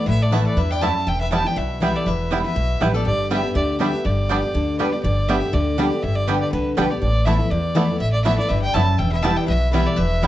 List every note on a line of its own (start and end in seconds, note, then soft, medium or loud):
0.06 0.44 A1 medium
0.06 0.54 A2 medium
0.06 0.21 B4 medium
0.06 0.24 E5 loud
0.21 0.32 A4 medium
0.21 0.35 D5 medium
0.31 0.55 E3 medium
0.31 0.55 A3 medium
0.31 0.42 A3 medium
0.31 0.38 A3 medium
0.31 0.56 B3 medium
0.31 0.38 B3 medium
0.31 0.56 E4 medium
0.31 0.42 E4 loud
0.31 0.39 E4 medium
0.31 0.45 B4 medium
0.31 0.42 B4 loud
0.31 0.46 E5 medium
0.31 0.42 A5 loud
0.46 0.58 A4 medium
0.46 0.59 D5 medium
0.57 0.93 E2 medium
0.57 0.81 G2 medium
0.57 0.72 B4 medium
0.57 0.72 E5 medium
0.71 0.82 D5 medium
0.71 0.83 G5 loud
0.81 1.05 F#2 medium
0.81 0.92 A3 medium
0.81 0.88 A3 medium
0.81 0.88 B3 medium
0.81 0.92 E4 medium
0.81 0.88 E4 medium
0.81 0.92 B4 medium
0.81 1.06 E5 medium
0.81 1.10 A5 loud
0.81 0.92 A5 medium
1.07 1.43 E1 medium
1.07 1.54 E2 medium
1.07 1.20 E5 medium
1.07 1.20 G5 loud
1.21 1.31 B4 medium
1.21 1.31 E5 medium
1.31 1.44 E3 medium
1.31 1.44 G3 medium
1.31 1.38 G3 medium
1.31 1.41 B3 medium
1.31 1.44 B3 medium
1.31 1.38 B3 medium
1.31 1.41 E4 loud
1.31 1.43 E4 medium
1.31 1.38 E4 medium
1.31 1.42 B4 loud
1.31 1.47 E5 medium
1.31 1.42 G5 loud
1.31 1.48 A5 loud
1.44 1.56 B3 soft
1.44 1.56 E4 soft
1.44 1.58 D5 medium
1.44 1.59 G5 medium
1.56 1.93 B1 medium
1.56 2.04 B2 medium
1.56 1.82 B4 medium
1.56 1.82 E5 medium
1.80 2.04 E3 medium
1.80 2.05 G3 medium
1.80 1.88 G3 medium
1.80 2.05 B3 medium
1.80 1.91 B3 medium
1.80 1.88 B3 medium
1.80 2.05 E4 medium
1.80 1.91 E4 medium
1.80 1.88 E4 medium
1.80 1.91 B4 medium
1.80 1.96 B4 medium
1.80 1.97 E5 loud
1.80 1.92 G5 medium
1.96 2.08 A4 medium
1.96 2.08 D5 medium
2.06 2.43 E1 medium
2.06 2.53 E2 medium
2.06 2.43 B4 medium
2.06 2.44 E5 medium
2.31 2.44 E3 medium
2.31 2.44 G3 medium
2.31 2.37 G3 medium
2.31 2.41 B3 medium
2.31 2.44 B3 medium
2.31 2.38 B3 medium
2.31 2.41 E4 medium
2.31 2.43 E4 medium
2.31 2.38 E4 medium
2.31 2.41 B4 medium
2.31 2.41 G5 loud
2.44 2.56 B3 soft
2.44 2.55 E4 medium
2.44 2.81 B4 medium
2.44 2.83 E5 medium
2.56 2.77 B1 medium
2.56 3.03 B2 medium
2.80 3.02 A1 medium
2.80 2.93 E3 medium
2.80 2.94 G3 medium
2.80 2.87 G3 medium
2.80 2.90 B3 medium
2.80 2.94 B3 medium
2.80 2.87 B3 medium
2.80 2.90 E4 medium
2.80 2.92 E4 medium
2.80 2.87 E4 medium
2.80 2.94 G4 medium
2.80 2.91 B4 medium
2.80 2.97 B4 medium
2.80 2.91 G5 loud
2.93 3.05 B3 soft
2.93 3.05 E4 medium
2.93 3.06 A4 medium
2.93 3.06 D5 medium
3.05 3.42 G1 medium
3.05 3.53 G2 medium
3.05 3.29 G4 medium
3.05 3.29 D5 medium
3.29 3.43 D3 soft
3.29 3.43 G3 medium
3.29 3.37 G3 medium
3.29 3.40 B3 medium
3.29 3.43 B3 medium
3.29 3.37 B3 medium
3.29 3.37 D4 medium
3.29 3.42 G4 medium
3.29 3.40 G4 loud
3.29 3.54 B4 medium
3.29 3.40 D5 loud
3.29 3.55 E5 loud
3.29 3.41 G5 medium
3.43 3.55 B3 soft
3.43 3.54 G4 medium
3.55 3.91 D2 medium
3.55 3.78 D3 medium
3.55 3.79 G4 medium
3.55 3.78 D5 medium
3.79 3.92 D3 medium
3.79 3.93 G3 medium
3.79 3.86 G3 medium
3.79 3.90 B3 medium
3.79 3.93 B3 medium
3.79 3.86 B3 medium
3.79 3.87 D4 medium
3.79 3.90 G4 medium
3.79 3.92 G4 medium
3.79 4.06 B4 medium
3.79 3.90 D5 medium
3.79 4.07 E5 medium
3.79 3.90 G5 medium
3.93 4.05 B3 soft
3.93 4.04 G4 medium
4.05 4.41 G1 medium
4.05 4.52 G2 medium
4.05 4.80 G4 medium
4.05 4.79 D5 medium
4.29 4.43 D3 medium
4.29 4.43 G3 medium
4.29 4.36 G3 medium
4.29 4.39 B3 loud
4.29 4.43 B3 medium
4.29 4.36 B3 medium
4.29 4.36 D4 medium
4.29 4.39 G4 medium
4.29 4.41 G4 medium
4.29 4.39 D5 loud
4.29 4.40 G5 loud
4.43 4.55 B3 soft
4.43 4.54 G4 medium
4.54 4.91 D2 medium
4.54 4.78 D3 medium
4.79 4.92 D3 medium
4.79 4.92 G3 medium
4.79 4.86 G3 medium
4.79 4.89 B3 medium
4.79 4.93 B3 medium
4.79 4.86 B3 medium
4.79 4.86 D4 medium
4.79 4.89 G4 medium
4.79 4.91 G4 medium
4.79 4.94 B4 medium
4.79 4.89 D5 medium
4.79 4.89 G5 medium
4.92 5.04 B3 soft
4.92 5.03 G4 soft
4.92 5.02 D5 medium
5.03 5.40 G1 medium
5.03 5.51 G2 medium
5.03 5.30 D5 medium
5.28 5.41 D3 medium
5.28 5.42 G3 medium
5.28 5.35 G3 medium
5.28 5.38 B3 loud
5.28 5.42 B3 loud
5.28 5.35 B3 medium
5.28 5.35 D4 medium
5.28 5.39 G4 loud
5.28 5.40 G4 medium
5.28 5.39 D5 medium
5.28 5.55 E5 medium
5.28 5.39 G5 medium
5.41 5.53 B3 soft
5.41 5.53 G4 medium
5.53 5.90 D2 medium
5.53 5.77 D3 medium
5.53 6.04 D5 medium
5.78 5.91 D3 loud
5.78 5.91 G3 medium
5.78 5.85 G3 medium
5.78 5.88 B3 medium
5.78 5.91 B3 loud
5.78 5.85 B3 medium
5.78 5.85 D4 medium
5.78 5.88 G4 medium
5.78 5.90 G4 medium
5.78 5.88 D5 medium
5.78 5.88 G5 medium
5.91 6.03 B3 medium
5.91 6.02 G4 medium
6.03 6.39 G1 medium
6.03 6.50 G2 medium
6.03 6.17 E5 medium
6.15 6.29 D5 medium
6.27 6.51 D3 medium
6.27 6.51 G3 medium
6.27 6.34 G3 medium
6.27 6.37 B3 medium
6.27 6.52 B3 loud
6.27 6.34 B3 medium
6.27 6.34 D4 medium
6.27 6.37 G4 loud
6.27 6.52 G4 medium
6.27 6.40 B4 medium
6.27 6.38 D5 loud
6.27 6.38 G5 medium
6.41 6.51 D5 medium
6.52 6.74 C2 medium
6.52 6.76 D3 medium
6.52 6.75 B4 medium
6.76 6.98 B1 medium
6.76 6.90 D3 medium
6.76 6.90 G3 loud
6.76 6.83 G3 medium
6.76 6.87 B3 medium
6.76 6.83 B3 medium
6.76 6.90 B3 loud
6.76 6.84 D4 medium
6.76 6.87 G4 medium
6.76 6.89 G4 loud
6.76 6.92 B4 medium
6.76 6.87 D5 loud
6.76 6.87 G5 medium
6.90 7.02 B3 soft
6.90 7.01 G4 medium
6.90 7.00 D5 medium
7.01 7.38 A1 medium
7.01 7.49 A2 medium
7.01 7.27 D5 loud
7.25 7.39 E3 medium
7.25 7.36 A3 medium
7.25 7.39 A3 medium
7.25 7.33 A3 medium
7.25 7.39 B3 loud
7.25 7.33 B3 medium
7.25 7.36 E4 medium
7.25 7.38 E4 loud
7.25 7.33 E4 medium
7.25 7.36 B4 medium
7.25 7.52 E5 medium
7.25 7.37 A5 loud
7.39 7.51 B3 medium
7.39 7.50 E4 medium
7.50 7.87 E2 loud
7.50 7.98 E2 loud
7.50 7.99 D5 medium
7.75 7.88 E3 loud
7.75 7.85 A3 medium
7.75 7.88 A3 medium
7.75 7.82 A3 medium
7.75 7.89 B3 loud
7.75 7.82 B3 medium
7.75 7.85 E4 medium
7.75 7.87 E4 loud
7.75 7.82 E4 medium
7.75 7.86 B4 medium
7.75 7.86 A5 medium
7.88 8.01 B3 soft
7.88 8.00 E4 medium
8.00 8.36 A1 medium
8.00 8.47 A2 medium
8.00 8.12 E5 loud
8.12 8.24 D5 medium
8.24 8.38 E3 medium
8.24 8.35 A3 medium
8.24 8.38 A3 medium
8.24 8.31 A3 medium
8.24 8.38 B3 loud
8.24 8.32 B3 medium
8.24 8.35 E4 medium
8.24 8.37 E4 medium
8.24 8.32 E4 medium
8.24 8.35 B4 loud
8.24 8.37 E5 loud
8.24 8.35 A5 loud
8.38 8.50 B3 soft
8.38 8.49 E4 medium
8.38 8.50 D5 medium
8.49 8.71 G1 medium
8.49 8.74 G2 medium
8.49 8.63 B4 medium
8.49 8.61 E5 loud
8.62 8.74 D5 medium
8.62 8.75 G5 loud
8.74 8.96 F#1 medium
8.74 8.98 F#2 loud
8.74 8.84 A3 medium
8.74 8.81 A3 medium
8.74 8.81 B3 medium
8.74 8.84 E4 medium
8.74 8.81 E4 medium
8.74 8.85 B4 medium
8.74 8.97 E5 medium
8.74 9.00 A5 loud
8.74 8.85 A5 medium
8.98 9.36 E1 medium
8.98 9.46 E2 medium
8.98 9.12 E5 medium
8.98 9.11 G5 loud
9.12 9.22 B4 medium
9.12 9.24 E5 loud
9.22 9.47 E3 medium
9.22 9.48 G3 medium
9.22 9.30 G3 medium
9.22 9.33 B3 loud
9.22 9.48 B3 medium
9.22 9.30 B3 medium
9.22 9.34 E4 loud
9.22 9.48 E4 loud
9.22 9.30 E4 medium
9.22 9.34 B4 loud
9.22 9.36 E5 medium
9.22 9.34 G5 medium
9.22 9.38 A5 loud
9.36 9.48 D5 medium
9.36 9.47 G5 medium
9.47 9.85 B1 medium
9.47 9.95 B2 medium
9.47 9.70 B4 medium
9.47 9.71 E5 medium
9.71 9.97 E3 loud
9.71 9.97 G3 medium
9.71 9.80 G3 medium
9.71 9.83 B3 medium
9.71 9.97 B3 loud
9.71 9.80 B3 medium
9.71 9.83 E4 medium
9.71 9.97 E4 loud
9.71 9.80 E4 medium
9.71 9.85 B4 medium
9.71 9.83 B4 medium
9.71 9.88 E5 loud
9.71 9.83 G5 medium
9.85 9.96 A4 medium
9.85 9.99 D5 medium
9.96 10.27 E1 medium
9.96 10.27 E2 medium
9.96 10.27 B4 medium
9.96 10.27 E5 loud
10.22 10.27 E3 medium
10.22 10.27 G3 medium
10.22 10.27 B3 medium
10.22 10.27 E4 loud
10.22 10.27 E4 medium
10.22 10.27 B4 loud
10.22 10.27 G5 loud